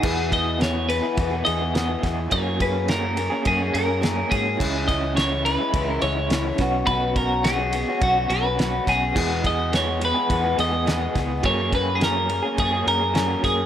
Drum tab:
CC |x-------|--------|x-------|--------|
RD |-xxxxxxx|xxxxxxxx|-xxxxxxx|xxxxxxxx|
SD |--o---oo|--o---o-|--o---oo|--o---oo|
BD |oo--o--o|oo--o--o|oo--o--o|oo--o--o|

CC |x-------|--------|
RD |-xxxxxxx|xxxxxxxx|
SD |--o---oo|--o---oo|
BD |oo--o--o|oo--o--o|